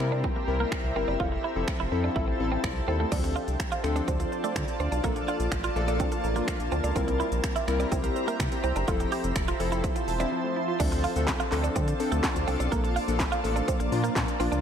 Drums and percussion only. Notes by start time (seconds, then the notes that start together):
0.00 finger snap
0.24 kick
0.72 finger snap, kick
1.20 kick
1.68 finger snap, kick
2.16 kick
2.64 finger snap, kick
3.12 kick, closed hi-hat, crash, shaker
3.24 closed hi-hat, shaker
3.36 shaker
3.48 closed hi-hat, shaker
3.60 finger snap, kick, closed hi-hat, shaker
3.72 closed hi-hat, shaker
3.84 finger snap, shaker
3.96 closed hi-hat, shaker
4.08 kick, closed hi-hat, shaker
4.20 closed hi-hat, shaker
4.32 shaker
4.44 closed hi-hat, shaker
4.56 finger snap, kick, closed hi-hat, shaker
4.68 closed hi-hat, shaker
4.80 shaker
4.92 closed hi-hat, shaker
5.04 kick, closed hi-hat, shaker
5.16 closed hi-hat, shaker
5.28 shaker
5.40 closed hi-hat, shaker
5.52 finger snap, kick, closed hi-hat, shaker
5.64 closed hi-hat, shaker
5.76 shaker
5.88 closed hi-hat, shaker
6.00 kick, closed hi-hat, shaker
6.12 closed hi-hat, shaker
6.24 shaker
6.36 closed hi-hat, shaker
6.48 finger snap, kick, closed hi-hat, shaker
6.60 closed hi-hat, shaker
6.72 shaker
6.84 closed hi-hat, shaker
6.96 kick, closed hi-hat, shaker
7.08 closed hi-hat, shaker
7.20 shaker
7.32 closed hi-hat, shaker
7.44 finger snap, kick, closed hi-hat, shaker
7.56 closed hi-hat, shaker
7.68 finger snap, shaker
7.80 closed hi-hat, shaker
7.92 kick, closed hi-hat, shaker
8.04 closed hi-hat, shaker
8.16 shaker
8.28 closed hi-hat, shaker
8.40 finger snap, kick, closed hi-hat, shaker
8.52 closed hi-hat, shaker
8.64 shaker
8.76 closed hi-hat, shaker
8.88 kick, closed hi-hat, shaker
9.00 closed hi-hat, shaker
9.12 open hi-hat, shaker
9.24 closed hi-hat, shaker
9.36 finger snap, kick, closed hi-hat, shaker
9.48 closed hi-hat, shaker
9.60 open hi-hat, shaker
9.72 closed hi-hat, shaker
9.84 kick, closed hi-hat, shaker
9.96 closed hi-hat, shaker
10.08 open hi-hat, shaker
10.20 closed hi-hat, shaker
10.80 kick, closed hi-hat, crash, shaker
10.92 closed hi-hat, shaker
11.04 open hi-hat, shaker
11.16 closed hi-hat, shaker
11.27 kick, snare, clap, closed hi-hat, shaker
11.40 closed hi-hat, shaker
11.52 clap, open hi-hat, shaker
11.64 closed hi-hat, shaker
11.76 kick, closed hi-hat, shaker
11.88 closed hi-hat, shaker
12.00 open hi-hat, shaker
12.12 closed hi-hat, shaker
12.23 kick, snare, clap, closed hi-hat, shaker
12.36 closed hi-hat, shaker
12.48 open hi-hat, shaker
12.60 closed hi-hat, shaker
12.72 kick, closed hi-hat, shaker
12.84 closed hi-hat, shaker
12.96 open hi-hat, shaker
13.08 closed hi-hat, shaker
13.19 kick, snare, clap, closed hi-hat, shaker
13.32 closed hi-hat, shaker
13.44 open hi-hat, shaker
13.56 closed hi-hat, shaker
13.68 kick, closed hi-hat, shaker
13.80 closed hi-hat, shaker
13.92 open hi-hat, shaker
14.04 closed hi-hat, shaker
14.16 kick, snare, clap, closed hi-hat, shaker
14.28 closed hi-hat, shaker
14.40 open hi-hat, shaker
14.52 closed hi-hat, shaker